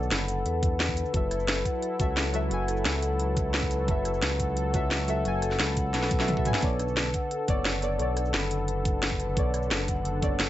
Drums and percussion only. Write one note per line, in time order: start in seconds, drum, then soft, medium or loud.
0.03 shaker soft
0.11 snare loud
0.11 closed hi-hat medium
0.20 cross-stick soft
0.28 closed hi-hat medium
0.28 shaker medium
0.46 closed hi-hat medium
0.63 kick loud
0.63 closed hi-hat medium
0.63 shaker medium
0.80 snare loud
0.80 closed hi-hat medium
0.88 kick medium
0.97 closed hi-hat medium
0.97 shaker medium
1.06 shaker soft
1.14 kick loud
1.14 closed hi-hat medium
1.31 cross-stick soft
1.31 closed hi-hat medium
1.31 shaker medium
1.40 shaker soft
1.48 snare loud
1.48 closed hi-hat medium
1.57 cross-stick soft
1.65 kick medium
1.65 closed hi-hat medium
1.65 shaker medium
1.82 closed hi-hat medium
2.00 kick loud
2.00 closed hi-hat medium
2.00 shaker medium
2.17 snare loud
2.17 closed hi-hat medium
2.34 closed hi-hat medium
2.34 shaker medium
2.51 closed hi-hat medium
2.68 cross-stick soft
2.68 closed hi-hat medium
2.68 shaker medium
2.77 shaker soft
2.85 snare loud
2.85 closed hi-hat medium
2.94 cross-stick soft
3.03 closed hi-hat medium
3.03 shaker medium
3.20 closed hi-hat medium
3.37 kick loud
3.37 closed hi-hat loud
3.37 shaker medium
3.54 snare loud
3.54 closed hi-hat medium
3.63 kick medium
3.71 closed hi-hat medium
3.71 shaker medium
3.88 kick loud
3.88 closed hi-hat medium
4.05 cross-stick soft
4.05 closed hi-hat loud
4.05 shaker medium
4.14 shaker soft
4.22 snare loud
4.22 closed hi-hat medium
4.31 cross-stick soft
4.40 kick medium
4.40 closed hi-hat loud
4.40 shaker medium
4.57 closed hi-hat medium
4.74 kick loud
4.74 closed hi-hat loud
4.74 shaker medium
4.91 snare loud
4.91 closed hi-hat medium
5.08 closed hi-hat medium
5.08 shaker medium
5.25 closed hi-hat medium
5.42 cross-stick soft
5.42 closed hi-hat loud
5.42 shaker medium
5.51 snare soft
5.51 shaker soft
5.59 snare loud
5.59 closed hi-hat medium
5.68 cross-stick soft
5.77 kick medium
5.77 closed hi-hat medium
5.77 shaker medium
5.94 snare medium
5.94 closed hi-hat medium
6.02 snare medium
6.11 kick loud
6.11 closed hi-hat loud
6.11 shaker medium
6.20 snare medium
6.28 closed hi-hat medium
6.28 mid tom medium
6.37 kick medium
6.45 closed hi-hat loud
6.45 mid tom loud
6.45 shaker medium
6.54 snare medium
6.54 shaker soft
6.62 kick loud
6.62 closed hi-hat medium
6.80 cross-stick soft
6.80 closed hi-hat loud
6.80 shaker medium
6.88 shaker soft
6.97 snare loud
6.97 closed hi-hat medium
7.05 cross-stick soft
7.14 kick medium
7.14 closed hi-hat loud
7.14 shaker medium
7.31 closed hi-hat medium
7.48 kick loud
7.48 closed hi-hat loud
7.48 shaker medium
7.65 snare loud
7.65 closed hi-hat medium
7.82 closed hi-hat medium
7.82 shaker medium
7.99 closed hi-hat medium
8.17 cross-stick soft
8.17 closed hi-hat loud
8.17 shaker medium
8.25 shaker soft
8.34 snare loud
8.34 closed hi-hat medium
8.43 cross-stick soft
8.51 closed hi-hat loud
8.51 shaker medium
8.68 closed hi-hat medium
8.85 kick loud
8.85 closed hi-hat medium
8.85 shaker medium
9.03 snare loud
9.03 closed hi-hat medium
9.11 kick medium
9.20 closed hi-hat medium
9.20 shaker medium
9.37 kick loud
9.37 closed hi-hat medium
9.54 cross-stick soft
9.54 closed hi-hat medium
9.54 shaker medium
9.63 shaker soft
9.71 snare loud
9.71 closed hi-hat medium
9.80 cross-stick soft
9.88 kick medium
9.88 closed hi-hat medium
9.88 shaker medium
10.05 closed hi-hat medium
10.22 kick loud
10.22 closed hi-hat medium
10.22 shaker medium
10.40 snare loud
10.40 closed hi-hat medium